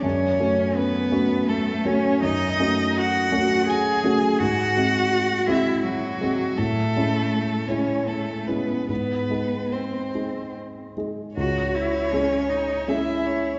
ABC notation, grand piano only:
X:1
M:3/4
L:1/8
Q:1/4=81
K:F#m
V:1 name="Grand piano"
F,, [A,CF]2 [A,CF]2 [A,CF] | [K:C#m] F,, [A,CF]2 [A,CF]2 [A,CF] | G,, [G,^B,F]2 [G,B,F]2 [G,B,F] | A,, [G,CE]2 [G,CE]2 [G,CE] |
G,, [G,DG]2 [G,DG]2 [G,DG] | C,,2 [G,CG]2 [G,CG]2 |]